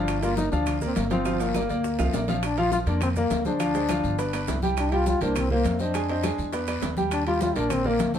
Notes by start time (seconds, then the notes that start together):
Already playing: G1 F3 D4 F4 F5
0.07 high bongo, high conga, high timbale, long guiro, claves, maracas
0.23 A#3 F4 A#4 D5, high bongo, high conga, high timbale, maracas
0.37 D#4, high bongo, high conga, low timbale, short guiro, maracas
0.52 D2 F3 D4 F4 F5, high bongo, high conga, short guiro, maracas
0.66 high bongo, high conga, low conga, high timbale, long guiro, claves, maracas
0.81 A#3 A#4 D5, high conga, low conga, maracas
0.86 C4
0.96 G1 A#3, high bongo, low bongo, high conga, high timbale, low timbale, short guiro, maracas
1.10 F3 C4 F4 F5, high bongo, high conga, high timbale, short guiro, maracas
1.25 F3 F4 F5, high bongo, high conga, high timbale, long guiro, claves, maracas
1.40 A#3, high bongo, high conga, high timbale, maracas
1.54 A#3 A#4 D5, high bongo, high conga, high timbale, short guiro, claves, maracas
1.69 D2 A#3 A#4 D5, high bongo, high conga, short guiro, maracas
1.84 high bongo, high conga, long guiro, maracas
1.98 C2 F3 F4 F5, high conga, low timbale, claves, maracas
2.13 A#1 A#3 A#4 D5, high bongo, low bongo, high conga, low timbale, short guiro, maracas
2.28 F3 F4 F5, high bongo, high conga, low timbale, short guiro, maracas
2.43 D4, high bongo, high conga, high timbale, long guiro, claves, maracas
2.57 F3 F4 F5, high bongo, high conga, high timbale
2.72 F4, high bongo, high conga, low timbale, short guiro, maracas
2.86 F2 A#3 D4 A#4 D5, high bongo, high conga, high timbale, short guiro, maracas
3.01 C4, high bongo, high conga, low conga, high timbale, long guiro, claves, maracas
3.16 A#3 A#4 D5, high conga, low conga, maracas
3.30 D2, high bongo, low bongo, high conga, high timbale, low timbale, short guiro, maracas
3.45 G#3 D4 G#4 C5, high bongo, high conga, short guiro, maracas
3.59 F3 F4 F5, high bongo, high conga, high timbale, long guiro, claves, maracas
3.74 G#3 G#4 C5, high bongo, high conga, high timbale, maracas
3.89 F3 F4 F5, high bongo, high conga, high timbale, low timbale, short guiro, claves, maracas
4.04 G1, high bongo, short guiro, maracas
4.18 B3 B4 D5, high bongo, high conga, high timbale, long guiro, maracas
4.33 B3 B4 D5, high conga, high timbale, claves, maracas
4.48 C2, high bongo, low bongo, high conga, high timbale, low timbale, short guiro, maracas
4.62 G3 G4 G5, high bongo, high conga, short guiro, maracas
4.77 D4, high bongo, high conga, high timbale, long guiro, claves, maracas
4.92 G3 F4 G4 G5, high bongo, high conga, high timbale
5.06 F4, high bongo, high conga, low timbale, short guiro, maracas
5.21 C2 A#3 D4 A#4 C5, high bongo, high conga, high timbale, short guiro, maracas
5.35 C4, high bongo, high conga, low conga, high timbale, long guiro, claves, maracas
5.50 A#3 A#4 C5, high conga, low conga
5.65 F2, high bongo, low bongo, high conga, high timbale, low timbale, short guiro, maracas
5.79 C4 D4 C5 D#5, high bongo, high conga, short guiro, maracas
5.94 G#3 G#4 G#5, high bongo, high conga, high timbale, long guiro, claves, maracas
6.09 C4 C5 D#5, high bongo, high conga, high timbale
6.23 G#3 G#4 G#5, high bongo, high conga, high timbale, low timbale, short guiro, claves, maracas
6.38 E2, high conga, short guiro, maracas
6.53 B3 B4 D5, high bongo, high conga, high timbale, long guiro, maracas
6.67 B3 B4 D5, high conga, high timbale, claves, maracas
6.82 D#2, high bongo, low bongo, high conga, high timbale, low timbale, short guiro, maracas
6.97 G3 G4 G5, high bongo, high conga, short guiro, maracas
7.11 D4, high bongo, high conga, high timbale, long guiro, claves, maracas
7.26 G3 F4 G4 G5, high bongo, high conga, high timbale
7.41 F4, high bongo, high conga, low timbale, short guiro, maracas
7.55 A#1 A#3 D4 A#4 D5, high bongo, high conga, high timbale, short guiro, maracas
7.70 C4, high bongo, high conga, low conga, high timbale, long guiro, claves, maracas
7.85 A#3 A#4 D5, high conga, low conga
7.99 D2, high bongo, low bongo, high conga, high timbale, low timbale, short guiro, maracas
8.14 A3 D4 A4 C5, high bongo, high conga, short guiro, maracas